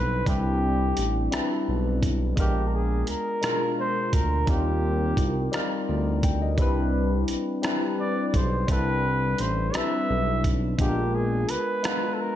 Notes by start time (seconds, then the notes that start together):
Already playing: B1 G3 C4 D4 E4 A4 B4
0.25 C2 G3 C4 D4 E4 G4, kick, closed hi-hat
0.30 G4
0.97 A1, closed hi-hat
1.31 B1 G3 C4 D4 E4, cross-stick, closed hi-hat
1.35 B4
1.68 B1
2.03 kick, closed hi-hat
2.36 A#1 G#3 B3 D4 F4, kick, closed hi-hat
2.40 G4 A#4
2.68 A#4
2.75 G#4
3.07 D2 A#4, closed hi-hat
3.41 B2 G#3 D4 F4, cross-stick, closed hi-hat
3.46 A#4
3.80 C5
4.13 D2 A#4, kick, closed hi-hat
4.46 D#2 G3 C4 D#4 F4 G4, kick, closed hi-hat
4.50 A#4
5.17 C2, kick, closed hi-hat
5.51 D2 G3 C4 D#4 F4, cross-stick, closed hi-hat
5.55 A#4
5.89 D2 D5
6.23 G5, kick, closed hi-hat
6.42 D#5
6.58 C2 G3 C4 D4 E4, kick, closed hi-hat
6.62 B4
7.28 B1, closed hi-hat
7.62 G3 C4 D4 E4, cross-stick, closed hi-hat
7.66 B4
8.00 D5
8.28 D5
8.34 B1 C5, kick, closed hi-hat
8.67 C2 G3 C4 D4 E4, kick, closed hi-hat
8.71 A4 B4
9.38 A1 C5, closed hi-hat
9.72 B1 G3 C4 D4 E4 E5, cross-stick, closed hi-hat
9.77 B4
10.10 B1
10.44 kick, closed hi-hat
10.78 A#1 G#3 B3 D4 F4 G4, kick, closed hi-hat
10.82 G#4
10.89 A#4
11.15 G#4
11.49 D2 B4, closed hi-hat
11.83 G#3 B3 D4 F4, cross-stick, closed hi-hat
11.87 B4
12.14 A4
12.21 A#4